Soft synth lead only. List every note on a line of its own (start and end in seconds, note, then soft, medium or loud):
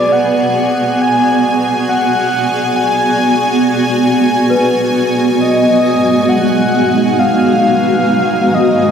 0.00 0.14 D5 medium
0.12 1.03 F#5 loud
1.02 1.89 G#5 medium
1.89 2.77 F#5 loud
2.76 4.08 G#5 loud
5.41 6.30 D#5 loud
6.29 7.20 F#5 loud
7.19 8.56 F5 loud
8.54 8.91 D#5 medium